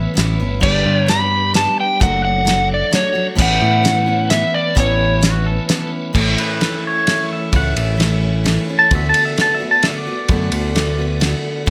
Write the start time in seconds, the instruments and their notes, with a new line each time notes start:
Already playing: steel-string acoustic guitar E3 B3 C#4 E4, tonewheel organ A3 C#4 B4, pedal steel guitar E5
0.14 picked electric bass A1, steel-string acoustic guitar E3 B3 C#4 E4, pedal steel guitar E5, closed hi-hat
0.18 snare
0.39 picked electric bass G1, steel-string acoustic guitar B3 C#4 E4
0.60 picked electric bass G1, steel-string acoustic guitar G2 D3 G3 B3 D4 G4, tonewheel organ G3 D4, electric slide guitar D5, kick, crash
0.86 picked electric bass G2
0.99 electric slide guitar C#5
1.06 steel-string acoustic guitar G3 B3 D4 G4, electric slide guitar B5, snare, closed hi-hat
1.54 steel-string acoustic guitar G3 B3 D4 G4, electric slide guitar A5, snare, closed hi-hat
1.80 electric slide guitar G5
2.00 picked electric bass F#1, steel-string acoustic guitar F#2 F#3 A3 D4 F#4, tonewheel organ F#3 C#5, electric slide guitar F#5, kick, closed hi-hat
2.25 electric slide guitar F#5
2.45 steel-string acoustic guitar F#3 A3 D4 F#4, snare, closed hi-hat
2.74 electric slide guitar D5
2.91 steel-string acoustic guitar F#3 A3 D4 F#4, snare, closed hi-hat
2.95 electric slide guitar C#5
3.13 steel-string acoustic guitar F#3 A3 D4 F#4
3.35 picked electric bass A1, steel-string acoustic guitar A2 E3 B3 C#4 E4, tonewheel organ A3 C#4 B4, kick, crash
3.42 electric slide guitar F#5
3.62 picked electric bass A2
3.82 steel-string acoustic guitar E3 B3 C#4 E4, snare, closed hi-hat
4.06 steel-string acoustic guitar B3 C#4 E4
4.30 steel-string acoustic guitar E3 B3 C#4 E4, electric slide guitar E5, snare, closed hi-hat
4.54 electric slide guitar D5
4.75 picked electric bass A1, steel-string acoustic guitar A2 E3 B3 C#4 E4, kick, closed hi-hat
4.80 electric slide guitar C#5
5.21 steel-string acoustic guitar E3 B3 C#4 E4, pedal steel guitar F#4, snare, closed hi-hat
5.46 pedal steel guitar A4
5.68 steel-string acoustic guitar E3 B3 C#4 E4, pedal steel guitar A4, snare, closed hi-hat
6.13 picked electric bass A1, steel-string acoustic guitar A2 E3 A3 C#4 E4, tonewheel organ A3 E4 C#5, kick, crash
6.38 pedal steel guitar B4, ride
6.59 steel-string acoustic guitar E3 A3 C#4 E4, snare, ride
6.87 pedal steel guitar C#5
7.07 steel-string acoustic guitar E3 A3 C#4 E4, snare, ride
7.33 pedal steel guitar E5
7.52 picked electric bass C#2, steel-string acoustic guitar A2 E3 A3 C#4 E4, pedal steel guitar F#5, kick, ride
7.76 picked electric bass A1, pedal steel guitar E5, ride
7.98 steel-string acoustic guitar E3 A3 C#4 E4, snare, ride
8.44 steel-string acoustic guitar E3 A3 C#4 E4, snare, ride
8.68 steel-string acoustic guitar A3 C#4 E4
8.79 pedal steel guitar A5
8.91 picked electric bass D2, steel-string acoustic guitar D3 A3 B3 F#4, tonewheel organ B3 F#4 D5, kick, ride
8.95 pedal steel guitar E5
9.09 pedal steel guitar A5
9.14 ride
9.25 pedal steel guitar E5
9.36 steel-string acoustic guitar D3 A3 B3 F#4, snare, ride
9.41 pedal steel guitar A5
9.55 pedal steel guitar E5
9.60 steel-string acoustic guitar A3 B3 F#4
9.71 pedal steel guitar A5
9.83 steel-string acoustic guitar D3 A3 B3 F#4, pedal steel guitar E5, snare, ride
9.98 pedal steel guitar D5
10.07 steel-string acoustic guitar A3 B3 F#4
10.28 picked electric bass F#2, steel-string acoustic guitar D3 A3 B3 F#4, kick, ride
10.52 picked electric bass D2, ride
10.75 steel-string acoustic guitar D3 A3 B3 F#4, snare, ride
10.99 steel-string acoustic guitar A3 B3 F#4
11.20 steel-string acoustic guitar D3 A3 B3 F#4, snare, ride
11.66 steel-string acoustic guitar A2 E3 A3